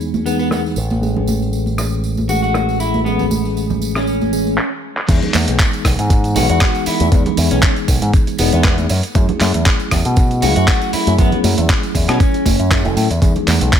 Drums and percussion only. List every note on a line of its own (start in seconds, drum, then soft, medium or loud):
0.01 tambourine soft
0.14 tambourine soft
0.14 high conga medium
0.26 tambourine medium
0.39 tambourine soft
0.51 cross-stick medium
0.51 tambourine medium
0.51 high conga medium
0.66 tambourine soft
0.76 tambourine medium
0.90 tambourine soft
0.90 high conga medium
1.03 tambourine soft
1.17 low conga medium
1.27 tambourine medium
1.27 high conga medium
1.42 tambourine soft
1.53 tambourine soft
1.66 tambourine soft
1.66 high conga medium
1.78 cross-stick medium
1.78 tambourine medium
1.93 tambourine soft
2.04 tambourine soft
2.17 tambourine soft
2.17 high conga medium
2.29 tambourine medium
2.44 tambourine soft
2.54 cross-stick medium
2.54 tambourine soft
2.54 high conga medium
2.69 tambourine soft
2.80 tambourine medium
2.94 tambourine soft
2.94 high conga medium
3.06 tambourine soft
3.19 tambourine soft
3.19 low conga medium
3.31 tambourine medium
3.31 high conga medium
3.45 tambourine soft
3.57 tambourine medium
3.70 tambourine soft
3.70 high conga medium
3.70 low conga medium
3.82 tambourine medium
3.95 cross-stick medium
3.95 tambourine soft
4.07 tambourine soft
4.21 tambourine soft
4.21 high conga medium
4.33 tambourine loud
4.47 tambourine soft
4.58 clap loud
4.97 clap medium
5.09 kick loud
5.09 closed hi-hat medium
5.09 crash loud
5.09 tambourine medium
5.23 closed hi-hat soft
5.23 low conga medium
5.34 clap medium
5.34 open hi-hat loud
5.34 tambourine medium
5.34 high conga medium
5.48 closed hi-hat medium
5.48 tambourine soft
5.59 kick loud
5.59 clap loud
5.59 closed hi-hat medium
5.59 tambourine medium
5.73 closed hi-hat soft
5.73 tambourine soft
5.85 kick medium
5.85 cross-stick medium
5.85 open hi-hat medium
5.85 tambourine medium
5.99 closed hi-hat medium
5.99 tambourine soft
6.10 kick loud
6.10 closed hi-hat medium
6.10 tambourine medium
6.24 closed hi-hat soft
6.24 tambourine soft
6.36 open hi-hat loud
6.36 tambourine loud
6.49 closed hi-hat medium
6.49 tambourine soft
6.61 kick loud
6.61 cross-stick medium
6.61 clap loud
6.61 closed hi-hat medium
6.61 tambourine soft
6.75 closed hi-hat soft
6.75 tambourine soft
6.86 open hi-hat loud
6.86 tambourine loud
7.00 closed hi-hat medium
7.00 tambourine soft
7.00 high conga medium
7.12 kick loud
7.12 closed hi-hat medium
7.12 tambourine medium
7.26 closed hi-hat soft
7.26 low conga medium
7.37 open hi-hat loud
7.37 tambourine medium
7.51 closed hi-hat medium
7.51 tambourine soft
7.63 kick loud
7.63 clap loud
7.63 closed hi-hat medium
7.63 tambourine medium
7.76 closed hi-hat soft
7.76 tambourine soft
7.88 kick medium
7.88 open hi-hat medium
7.88 tambourine loud
8.02 closed hi-hat medium
8.02 tambourine soft
8.13 kick loud
8.13 closed hi-hat medium
8.13 tambourine soft
8.27 closed hi-hat soft
8.27 tambourine soft
8.38 open hi-hat loud
8.38 tambourine medium
8.53 closed hi-hat medium
8.53 tambourine soft
8.64 kick loud
8.64 cross-stick medium
8.64 clap loud
8.64 closed hi-hat medium
8.64 tambourine soft
8.78 closed hi-hat soft
8.78 tambourine soft
8.78 high conga medium
8.89 open hi-hat loud
8.89 tambourine loud
9.03 closed hi-hat medium
9.03 tambourine soft
9.15 kick loud
9.15 closed hi-hat soft
9.15 tambourine soft
9.29 closed hi-hat soft
9.29 low conga medium
9.40 clap medium
9.40 open hi-hat loud
9.40 tambourine medium
9.40 high conga medium
9.54 closed hi-hat medium
9.54 tambourine soft
9.66 kick loud
9.66 clap loud
9.66 closed hi-hat medium
9.66 tambourine soft
9.80 closed hi-hat soft
9.80 tambourine soft
9.91 kick medium
9.91 cross-stick medium
9.91 open hi-hat medium
9.91 tambourine medium
10.05 closed hi-hat medium
10.05 tambourine soft
10.16 kick loud
10.16 closed hi-hat soft
10.16 tambourine medium
10.31 closed hi-hat soft
10.31 tambourine soft
10.42 open hi-hat loud
10.42 tambourine loud
10.56 closed hi-hat medium
10.56 tambourine soft
10.68 kick loud
10.68 cross-stick medium
10.68 clap loud
10.68 closed hi-hat medium
10.68 tambourine soft
10.81 closed hi-hat soft
10.81 tambourine soft
10.93 open hi-hat loud
10.93 tambourine medium
11.07 closed hi-hat medium
11.07 tambourine soft
11.07 high conga medium
11.19 kick loud
11.19 closed hi-hat medium
11.19 tambourine soft
11.32 closed hi-hat soft
11.32 low conga medium
11.44 open hi-hat loud
11.44 tambourine medium
11.44 high conga medium
11.58 closed hi-hat medium
11.58 tambourine soft
11.69 kick loud
11.69 clap loud
11.69 closed hi-hat medium
11.69 tambourine soft
11.83 closed hi-hat soft
11.83 tambourine soft
11.95 kick medium
11.95 open hi-hat medium
11.95 tambourine medium
12.09 cross-stick medium
12.09 closed hi-hat medium
12.09 tambourine soft
12.20 kick loud
12.20 closed hi-hat soft
12.20 tambourine soft
12.34 closed hi-hat soft
12.34 tambourine soft
12.46 kick medium
12.46 open hi-hat loud
12.46 tambourine loud
12.46 high conga medium
12.60 closed hi-hat soft
12.60 tambourine soft
12.71 kick loud
12.71 cross-stick medium
12.71 clap loud
12.71 closed hi-hat medium
12.71 tambourine soft
12.85 closed hi-hat soft
12.85 tambourine soft
12.85 high conga medium
12.97 open hi-hat loud
12.97 tambourine medium
13.11 closed hi-hat soft
13.11 tambourine soft
13.22 kick loud
13.22 closed hi-hat medium
13.22 tambourine soft
13.36 closed hi-hat soft
13.36 low conga medium
13.48 clap medium
13.48 open hi-hat loud
13.48 tambourine medium
13.48 high conga medium
13.61 closed hi-hat medium
13.61 tambourine soft
13.73 kick loud
13.73 clap loud
13.73 closed hi-hat medium
13.73 tambourine soft